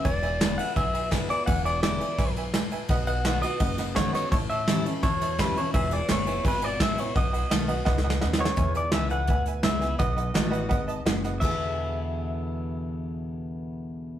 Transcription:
<<
  \new Staff \with { instrumentName = "Honky-tonk piano" } { \time 4/4 \key e \mixolydian \tempo 4 = 169 <b' e'' gis''>8 <b' e'' gis''>8 <b' e'' gis''>8 <b' e'' gis''>8 <b' e'' gis''>8 <b' e'' gis''>8 <b' e'' gis''>8 <b' e'' gis''>8 | <b' e'' gis''>8 <b' e'' gis''>8 <b' e'' gis''>8 <b' e'' gis''>8 <b' e'' gis''>8 <b' e'' gis''>8 <b' e'' gis''>8 <b' e'' gis''>8 | <b' dis'' fis''>8 <b' dis'' fis''>8 <b' dis'' fis''>8 <b' dis'' fis''>8 <b' dis'' fis''>8 <b' dis'' fis''>8 <b' dis'' fis''>8 <b' dis'' fis''>8 | <cis'' e'' a''>8 <cis'' e'' a''>8 <cis'' e'' a''>8 <cis'' e'' a''>8 <cis'' e'' a''>8 <cis'' e'' a''>8 <cis'' e'' a''>8 <cis'' e'' a''>8 |
<b' e'' gis''>8 <b' e'' gis''>8 <b' e'' gis''>8 <b' e'' gis''>8 <b' e'' gis''>8 <b' e'' gis''>8 <b' e'' gis''>8 <b' e'' gis''>8 | <b' dis'' fis''>8 <b' dis'' fis''>8 <b' dis'' fis''>8 <b' dis'' fis''>8 <b' dis'' fis''>8 <b' dis'' fis''>8 <b' dis'' fis''>8 <b' dis'' fis''>8 | <b' e'' gis''>8 <b' e'' gis''>8 <b' e'' gis''>8 <b' e'' gis''>8 <b' e'' gis''>8 <b' e'' gis''>8 <b' e'' gis''>8 <b' e'' gis''>8 | <b' dis'' fis''>8 <b' dis'' fis''>8 <b' dis'' fis''>8 <b' dis'' fis''>8 <b' dis'' fis''>8 <b' dis'' a''>8 <b' dis'' fis''>8 <b' dis'' fis''>8 |
<b' e'' gis''>1~ | <b' e'' gis''>1 | }
  \new Staff \with { instrumentName = "Clean electric guitar" } { \time 4/4 \key e \mixolydian d''4. fis''8 e''4 r8 d''8 | fis''8 d''8 d''4. r4. | r8 fis''4 dis''4 r8 cis''8 cis''8 | cis''8 e''4 r8 cis''4 b'8 cis''8 |
e''8 d''8 cis''4 b'8 d''8 e''8 cis''8 | dis''2. r8 cis''8~ | cis''8 d''8 e''8 fis''4 r8 e''4 | dis''2. r4 |
e''1~ | e''1 | }
  \new Staff \with { instrumentName = "Steel-string acoustic guitar" } { \time 4/4 \key e \mixolydian << { r4 <d gis b e'>8 <b e'>8 r4 <d gis b e'>8 <b e'>8 | r4 <d gis b e'>8 <b e'>8 r2 | r4 <dis a b fis'>8 <b fis'>8 r4 <dis a b fis'>8 <b fis'>8 | r4 <e g cis' e'>8 <cis' e'>8 r4 <e g cis' e'>8 <cis' e'>8 |
r4 <d gis b e'>8 <b e'>8 r4 <d gis b e'>8 <b e'>8 | r4 <dis a b fis'>8 <b fis'>8 r2 | r4 <d gis b e'>8 <b e'>8 r4 <d gis b e'>8 <b e'>8 | r4 <dis a b fis'>8 <b fis'>8 r2 |
<e, b, d gis b e'>1~ | <e, b, d gis b e'>1 | } \\ { e,2 b,2 | e,2 gis,4 a,4 | b,2 fis,2 | a,2 e,2 |
e,2 b,2 | b,2 gis,4 fis,4 | e,2 b,2 | b,2 gis,4 fis,4 |
r1 | r1 | } >> }
  \new Staff \with { instrumentName = "Upright bass" } { \clef bass \time 4/4 \key e \mixolydian e,,2 b,,2 | e,,2 b,,2 | b,,2 fis,,2 | a,,2 e,2 |
e,,4 fis,,4 gis,,4 a,,4 | b,,4 b,,4 cis,4 dis,4 | e,4 cis,4 d,4 cis,4 | b,,4 a,,4 gis,,4 fis,,4 |
e,1~ | e,1 | }
  \new DrumStaff \with { instrumentName = "Drums" } \drummode { \time 4/4 <bd cymr>8 cymr8 <cymr sn>8 cymr8 <bd cymr>8 cymr8 <bd cymr sn>8 cymr8 | <bd cymr>8 cymr8 <cymr sn>8 cymr8 <bd cymr sn>8 cymr8 <cymr sn>8 cymr8 | <bd cymr>8 cymr8 <cymr sn>8 cymr8 <bd cymr sn>8 <cymr sn>8 <bd cymr sn>8 <cymr sn>8 | <bd cymr>8 cymr8 <cymr sn>8 cymr8 <bd cymr sn>8 <cymr sn>8 <bd cymr sn>8 cymr8 |
<bd cymr>8 cymr8 <cymr sn>8 cymr8 <bd cymr>8 cymr8 <bd cymr sn>8 cymr8 | <bd cymr>8 cymr8 <cymr sn>8 cymr8 \tuplet 3/2 { <bd sn>8 sn8 sn8 sn8 sn8 sn8 } | <hh bd>8 hh8 <hh sn>8 hh8 <hh bd>8 hh8 <hh sn>8 <hh sn>8 | <hh bd>8 hh8 <hh sn>8 hh8 <hh bd>8 hh8 <hh sn>8 <hh sn>8 |
<cymc bd>4 r4 r4 r4 | r4 r4 r4 r4 | }
>>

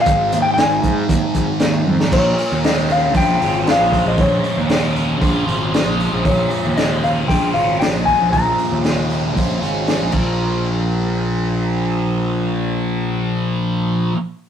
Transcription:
<<
  \new Staff \with { instrumentName = "Electric slide guitar" } { \time 4/4 \key bes \minor \tempo 4 = 116 f''8. g''16 aes''2 r4 | des''4 ees''8 f''8 g''4 f''8. ees''16 | des''4 r2. | des''4 ees''8 f''8 g''8 f''8 g''8 aes''8 |
bes''2. r4 | r1 | r1 | }
  \new Staff \with { instrumentName = "Distorted electric guitar" } { \clef bass \time 4/4 \key bes \minor <aes, ees aes>1 | bes,4 aes8 des'8 f'8 des'8 aes8 f8 | bes,4 aes8 des'8 f'8 des'8 aes8 f8 | bes,4 aes8 des'8 f'8 des'8 aes8 f8 |
bes,4 aes8 des'8 f'8 des'8 aes8 <bes, f bes>8~ | <bes, f bes>1~ | <bes, f bes>1 | }
  \new Staff \with { instrumentName = "Picked electric bass" } { \clef bass \time 4/4 \key bes \minor aes,,8 ees,16 r16 aes,,8 aes,8 ees,16 r16 aes,,16 r16 ees,8 f,16 r16 | bes,,8 r16 ees,4~ ees,16 bes,,8 aes,,8. bes,,8 bes,,16 | bes,,8 r16 ees,4~ ees,16 bes,,8 aes,,8. bes,,8 bes,,16 | bes,,8 r16 ees,4~ ees,16 bes,,8 aes,,8. bes,,8 bes,,16 |
bes,,8 r16 ees,4~ ees,16 bes,,8 aes,,8. bes,,16 bes,,8~ | bes,,1~ | bes,,1 | }
  \new DrumStaff \with { instrumentName = "Drums" } \drummode { \time 4/4 <hh bd>8 hh8 <hh sn>8 <hh bd>8 <hh bd>8 <hh bd>8 <hh sn>8 tommh16 sn16 | <cymc bd>8 hho8 <hho sn>8 hho8 <hho bd>8 hho8 <hho sn>8 <hho bd>8 | <hho bd>8 hho8 <hho sn>8 hho8 <hho bd>8 hho8 <hho sn>8 hho8 | <hho bd>8 hho8 <hho sn>8 hho8 <hho bd>8 hho8 <hho sn>8 <hho bd>8 |
<hho bd>8 hho8 <hho sn>8 hho8 <hho bd>8 hho8 <hho sn>8 <cymc bd>8 | r4 r4 r4 r4 | r4 r4 r4 r4 | }
>>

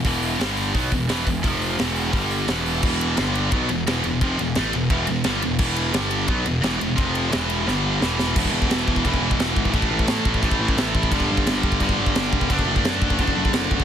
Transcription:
<<
  \new Staff \with { instrumentName = "Distorted electric guitar" } { \clef bass \time 4/4 \key e \minor \tempo 4 = 174 <e, b, e>4 <g, d g>4 <b, fis b>8 <e, b,>8 <e, b, e>8 <e, b,>8 | <f, c f>4 <e, b, e>4 <g, d g>4 <e, b, e>4 | <e, b, e>4 <g, d g>4 <b, fis b>8 <e, b,>8 <e, b, e>8 <e, b,>8 | <f, c f>8 <e, b,>8 <a, e a>8 <e, b,>8 <e, b, e>8 <e, b,>8 <g, d g>8 <e, b,>8 |
<e, b, e>4 <g, d g>4 <b, fis b>8 <e, b,>8 <e, b, e>8 <e, b,>8 | <f, c f>4 <e, b, e>4 <g, d g>4 <e, b, e>4 | <e, b, e>2 <e, b, e>2 | <a, e a>2 <a, e a>2 |
<g, d g>2 <g, d g>2 | <d a d'>2 <d a d'>2 | }
  \new Staff \with { instrumentName = "Picked electric bass" } { \clef bass \time 4/4 \key e \minor e,,4 g,,4 b,,8 e,,8 e,,8 e,,8 | f,,4 e,,4 g,,4 e,,4 | e,,4 g,,4 b,,8 e,,8 e,,8 e,,8 | f,,8 e,,8 a,,8 e,,8 e,,8 e,,8 g,,8 e,,8 |
e,,4 g,,4 b,,8 e,,8 e,,8 e,,8 | f,,4 e,,4 g,,4 e,,4 | e,,8 e,,8 e,,8 e,,8 e,,8 e,,8 e,,8 gis,,8 | a,,8 a,,8 a,8 a,,8 a,,8 a,,8 a,,8 a,,8 |
g,,8 g,,8 g,,8 g,,8 g,,8 g,,8 g,,8 e,,8 | fis,,8 fis,,8 fis,8 fis,,8 fis,,8 fis,,8 fis,,8 fis,,8 | }
  \new DrumStaff \with { instrumentName = "Drums" } \drummode { \time 4/4 <hho bd>8 hho8 <hho sn>8 hho8 <hho bd>8 <hho bd>8 <hho sn>8 <hho bd>8 | <hho bd>8 hho8 <hho sn>8 hho8 <hho bd>8 hho8 <hho sn>8 hho8 | <cymc bd>8 cymr8 <cymr sn>8 cymr8 <bd cymr>8 cymr8 <cymr sn>8 cymr8 | <bd cymr>8 cymr8 <cymr sn>8 cymr8 <bd cymr>8 cymr8 <cymr sn>8 cymr8 |
<cymc bd>8 cymr8 <cymr sn>8 cymr8 <bd cymr>8 cymr8 <cymr sn>8 cymr8 | <bd cymr>8 cymr8 <cymr sn>8 cymr8 sn4 sn8 sn8 | <cymc bd>16 bd8 bd16 <cymc sn>8 bd16 bd16 <cymc bd>16 bd8 bd16 <cymc sn>8 bd16 bd16 | <cymc bd>16 bd8 bd16 <cymc sn>8 bd16 bd16 <cymc bd>16 bd8 bd16 <cymc sn>8 bd16 bd16 |
<cymc bd>16 bd8 bd16 <cymc sn>8 bd16 bd16 <cymc bd>16 bd8 bd16 <cymc sn>8 bd16 bd16 | <cymc bd>16 bd8 bd16 <cymc sn>8 bd16 bd16 <cymc bd>16 bd8 bd16 <cymc sn>8 bd16 bd16 | }
>>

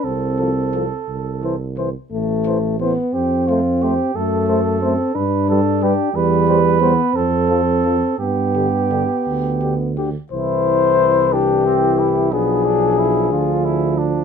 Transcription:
<<
  \new Staff \with { instrumentName = "Trumpet" } { \time 6/8 \key c \mixolydian \tempo 4. = 59 r8 a'8 a'8 r8 c''8 c''8 | \key c \major r8 c''8 c''8 r8 c''8 c''8 | r8 c''8 c''8 r8 b'8 b'8 | r8 c''8 c''8 r8 a'8 a'8 |
r8 g'8 g'8 r8 g'8 g'8 | c''4. g'4. | gis'2~ gis'8 r8 | }
  \new Staff \with { instrumentName = "Flugelhorn" } { \time 6/8 \key c \mixolydian a'2~ a'16 r8. | \key c \major r4. g'8 f'8 g'8 | a'4. b'8 a'8 g'8 | b'4. a'4. |
g'2~ g'16 r8. | e'4. d'8 c'8 e'8 | b8 d'8 e'8 f'8 e'8 d'8 | }
  \new Staff \with { instrumentName = "French horn" } { \time 6/8 \key c \mixolydian c'4. r4. | \key c \major a4 b8 c'4. | a4 c'8 d'4. | g4 b8 c'4. |
b2~ b8 r8 | e'4. e'4. | d'2. | }
  \new Staff \with { instrumentName = "Trombone" } { \clef bass \time 6/8 \key c \mixolydian r8 f8 f8 r8 e8 e8 | \key c \major r8 e8 e8 r8 a8 a8 | r8 a8 a8 r8 g8 g8 | r8 g8 g8 r8 f8 f8 |
r8 d8 d8 r8 d8 d8 | e4. e4. | f2. | }
  \new Staff \with { instrumentName = "Tuba" } { \clef bass \time 6/8 \key c \mixolydian c,4. c,4. | \key c \major a,,4. f,4. | fis,4. g,4. | e,4. f,4. |
g,4. d,4. | c,2. | b,,4. d,4. | }
>>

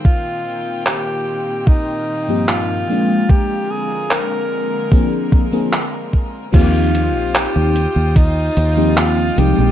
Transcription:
<<
  \new Staff \with { instrumentName = "Alto saxophone" } { \time 4/4 \key ees \major \tempo 4 = 74 f'4 g'4 ees'4 f'4 | g'8 aes'8 bes'4. r4. | f'4 g'4 ees'4 f'8 g'8 | }
  \new Staff \with { instrumentName = "String section" } { \time 4/4 \key ees \major << { <bes, ees bes g''>1 | <d aes bes'>1 | <f' ees'''>1 | } \\ { <c' f'>1~ | <c' f'>1 | <c'' g''>1 | } >> }
  \new Staff \with { instrumentName = "FM electric piano" } { \time 4/4 \key ees \major r2 r8. <g, f bes c' ees' g'>8. <f aes bes c' d'>8~ | <f aes bes c' d'>2 <f bes c' d' aes'>8. <f bes c' d' aes'>16 r4 | <f bes c' ees' g'>4. r4 r16 <f bes c' ees' g'>8. <f aes c' ees' g''>8 | }
  \new Staff \with { instrumentName = "Fingered electric bass" } { \clef bass \time 4/4 \key ees \major r1 | r1 | ees,8. bes,,8 ees,8 ees,8. ees,4 c,16 bes,,16 | }
  \new DrumStaff \with { instrumentName = "Drums" } \drummode { \time 4/4 bd4 hc4 bd4 hc4 | bd4 hc4 bd8 bd8 hc8 bd8 | <cymc hh bd>8 hh8 <hc hh>8 hh8 <hh bd>8 hh8 <hc hh>8 hh8 | }
>>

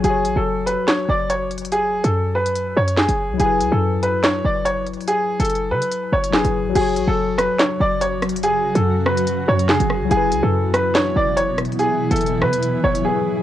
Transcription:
<<
  \new Staff \with { instrumentName = "Upright piano" } { \time 4/4 \key fis \minor \tempo 4 = 143 gis'8. a'8. b'8 cis''8 d''8 cis''8 r8 | gis'8. a'8. b'4 cis''8 gis'4 | gis'8. a'8. b'8 cis''8 d''8 cis''8 r8 | gis'8. a'8. b'4 cis''8 gis'4 |
gis'8. a'8. b'8 cis''8 d''8 cis''8 r8 | gis'8. a'8. b'4 cis''8 gis'4 | gis'8. a'8. b'8 cis''8 d''8 cis''8 r8 | gis'8. a'8. b'4 cis''8 gis'4 | }
  \new Staff \with { instrumentName = "Tine electric piano" } { \time 4/4 \key fis \minor <fis fis' cis''>1~ | <fis fis' cis''>1 | <fis e' b'>1~ | <fis e' b'>2. <fis e' gis' b'>4 |
<fis fis' cis''>1~ | <fis fis' cis''>1 | <fis e' b'>1~ | <fis e' b'>2. <fis e' gis' b'>4 | }
  \new Staff \with { instrumentName = "Ambient pad" } { \clef bass \time 4/4 \key fis \minor r1 | r1 | r1 | r1 |
<cis fis fis'>1~ | <cis fis fis'>1 | <b, e b e'>1~ | <b, e b e'>1 | }
  \new Staff \with { instrumentName = "808-style bass" } { \clef bass \time 4/4 \key fis \minor fis,,8 a,,16 fis,,4 r8. fis,,4.~ | fis,,8. fis,4.~ fis,16 fis,8. fis,,8 cis,16 | fis,,8 cis,16 fis,4.~ fis,16 fis,,4~ fis,,16 r16 | r8. fis,,8. cis16 r8. fis,,8. fis,,8 a,,16 |
fis,,8 a,,16 fis,,4 r8. fis,,4.~ | fis,,8. fis,4.~ fis,16 fis,8. fis,,8 cis,16 | fis,,8 cis,16 fis,4.~ fis,16 fis,,4~ fis,,16 r16 | r8. fis,,8. cis16 r8. fis,,8 r4 | }
  \new DrumStaff \with { instrumentName = "Drums" } \drummode { \time 4/4 hh8 hh8 r8 hh8 <hc hh sn>4 \tuplet 3/2 { hh16 r16 r16 hh16 hh16 hh16 } | hh8. hh16 r8. hh16 hh8. hh16 <hc sn>16 hh8. | hh8 hh8 r8 hh8 <hc hh sn>4 \tuplet 3/2 { hh16 r16 r16 hh16 hh16 hh16 } | hh8. hh32 hh32 hh32 hh8 r32 hh16 hh8. hh16 <hc sn>16 hh8. |
<cymc hh>8 hh8 r8 <hh ss>8 <hc hh sn>4 \tuplet 3/2 { hh16 r16 r16 <hh ss>16 hh16 hh16 } | hh8. hh16 r8 ss16 hh16 hh8. hh16 <hc sn>16 hh16 ss8 | hh8 hh8 r8 <hh ss>8 <hc hh sn>4 \tuplet 3/2 { hh16 r16 r16 <hh ss>16 hh16 hh16 } | hh8. hh32 hh32 hh32 hh16. ss16 hh16 hh8. hh16 r4 | }
>>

